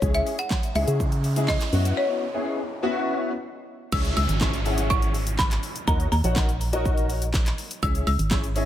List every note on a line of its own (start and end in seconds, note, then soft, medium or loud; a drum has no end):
0.00 0.22 C#2 loud
0.00 0.38 G#3 medium
0.00 0.38 C#4 medium
0.00 0.38 E4 medium
0.00 0.38 G#4 medium
0.00 0.16 C#5 loud
0.00 kick loud
0.00 noise sweep medium
0.00 shaker medium
0.14 0.26 E5 medium
0.14 closed hi-hat medium
0.14 shaker medium
0.27 open hi-hat medium
0.27 shaker medium
0.39 0.73 F#5 loud
0.39 closed hi-hat medium
0.39 shaker medium
0.50 kick loud
0.50 snare loud
0.50 clap loud
0.50 shaker medium
0.63 closed hi-hat medium
0.63 shaker soft
0.75 0.85 C#2 medium
0.75 1.05 G#3 medium
0.75 1.05 C#4 medium
0.75 1.05 E4 medium
0.75 1.05 G#4 medium
0.75 1.51 E5 loud
0.75 open hi-hat medium
0.75 shaker medium
0.88 1.57 C#3 loud
0.88 closed hi-hat medium
0.88 shaker medium
1.00 kick loud
1.00 shaker medium
1.12 closed hi-hat medium
1.12 shaker medium
1.24 open hi-hat medium
1.24 shaker medium
1.36 1.66 G#3 medium
1.36 1.66 C#4 medium
1.36 1.66 E4 medium
1.36 1.66 G#4 medium
1.36 closed hi-hat medium
1.36 shaker medium
1.48 1.99 D#5 loud
1.48 kick loud
1.48 snare medium
1.48 clap loud
1.48 shaker medium
1.61 clap medium
1.61 closed hi-hat medium
1.61 shaker medium
1.73 1.93 F#2 loud
1.73 2.22 B3 medium
1.73 2.22 C#4 medium
1.73 2.22 E4 medium
1.73 2.22 F#4 medium
1.73 open hi-hat medium
1.73 shaker medium
1.85 closed hi-hat medium
1.85 shaker medium
1.97 3.40 C#5 medium
2.34 2.58 B3 medium
2.34 2.58 C#4 medium
2.34 2.58 E4 medium
2.34 2.58 G#4 medium
2.83 3.30 B3 loud
2.83 3.30 C#4 medium
2.83 3.30 E4 medium
2.83 3.31 F#4 loud
3.92 4.12 C#2 loud
3.92 4.16 C#4 medium
3.92 4.16 E4 medium
3.92 4.16 G#4 medium
3.92 4.16 C#5 medium
3.92 4.16 E5 medium
3.92 4.16 E6 loud
3.92 kick loud
3.92 crash loud
3.92 downlifter medium
3.92 shaker medium
4.05 closed hi-hat medium
4.05 shaker medium
4.17 4.27 C#2 loud
4.17 4.62 E6 loud
4.17 open hi-hat medium
4.17 shaker medium
4.29 5.59 G#1 loud
4.29 closed hi-hat medium
4.29 shaker medium
4.41 4.53 C#4 medium
4.41 4.53 E4 medium
4.41 4.53 G#4 medium
4.41 4.53 C#5 medium
4.41 4.53 E5 medium
4.41 kick loud
4.41 snare loud
4.41 clap loud
4.41 shaker medium
4.54 closed hi-hat medium
4.54 shaker medium
4.65 5.13 C#4 medium
4.65 5.13 E4 medium
4.65 5.13 G#4 medium
4.65 5.13 C#5 medium
4.65 5.13 F#5 medium
4.65 open hi-hat medium
4.65 shaker medium
4.78 closed hi-hat medium
4.78 shaker medium
4.90 5.40 C#6 loud
4.90 kick loud
4.90 shaker medium
5.02 closed hi-hat medium
5.02 shaker medium
5.14 open hi-hat medium
5.14 shaker medium
5.27 closed hi-hat medium
5.27 shaker medium
5.39 5.89 B5 loud
5.39 kick loud
5.39 snare medium
5.39 clap loud
5.39 shaker medium
5.51 clap medium
5.51 closed hi-hat medium
5.51 shaker medium
5.63 open hi-hat medium
5.63 shaker medium
5.76 closed hi-hat medium
5.76 shaker medium
5.87 6.08 D#2 loud
5.87 6.05 D#4 medium
5.87 6.05 F#4 medium
5.87 6.05 A#4 medium
5.87 6.06 C#5 medium
5.87 6.06 D#5 medium
5.87 5.99 A#5 loud
5.87 kick loud
5.87 shaker medium
6.00 closed hi-hat medium
6.00 shaker medium
6.12 6.22 D#2 loud
6.12 6.81 A#5 medium
6.12 open hi-hat medium
6.12 shaker soft
6.24 7.54 A#1 loud
6.24 6.48 D#4 medium
6.24 6.48 F#4 medium
6.24 6.48 A#4 medium
6.24 6.48 C#5 medium
6.24 6.48 F#5 medium
6.24 closed hi-hat medium
6.24 shaker medium
6.36 kick loud
6.36 snare loud
6.36 clap loud
6.36 shaker medium
6.49 closed hi-hat medium
6.49 shaker medium
6.61 open hi-hat medium
6.61 shaker medium
6.73 7.21 D#4 loud
6.73 7.21 F#4 medium
6.73 7.21 A#4 medium
6.73 7.21 C#5 medium
6.73 7.21 D#5 loud
6.73 closed hi-hat medium
6.73 shaker medium
6.85 kick loud
6.85 shaker medium
6.98 closed hi-hat medium
6.98 shaker medium
7.10 open hi-hat loud
7.10 shaker medium
7.22 closed hi-hat medium
7.22 shaker medium
7.34 kick loud
7.34 snare medium
7.34 clap loud
7.34 shaker medium
7.46 clap medium
7.46 closed hi-hat medium
7.46 shaker medium
7.58 open hi-hat medium
7.58 shaker medium
7.71 closed hi-hat medium
7.71 shaker medium
7.83 8.03 C#2 loud
7.83 8.06 C#4 medium
7.83 8.07 E4 medium
7.83 8.07 G#4 medium
7.83 8.07 C#5 medium
7.83 8.07 E5 medium
7.83 8.06 E6 loud
7.83 kick loud
7.83 shaker medium
7.95 closed hi-hat medium
7.95 shaker medium
8.07 8.17 C#2 loud
8.07 8.52 E6 loud
8.07 open hi-hat medium
8.07 shaker soft
8.19 8.65 G#1 loud
8.19 closed hi-hat medium
8.19 shaker medium
8.31 8.43 C#4 medium
8.31 8.43 E4 medium
8.31 8.43 G#4 medium
8.31 8.44 C#5 medium
8.31 8.44 E5 medium
8.31 kick loud
8.31 snare loud
8.31 clap loud
8.31 shaker medium
8.44 closed hi-hat medium
8.44 shaker medium
8.56 8.65 C#4 medium
8.56 8.65 E4 medium
8.56 8.65 G#4 medium
8.56 8.65 C#5 medium
8.56 8.65 D#5 medium
8.56 open hi-hat medium
8.56 shaker medium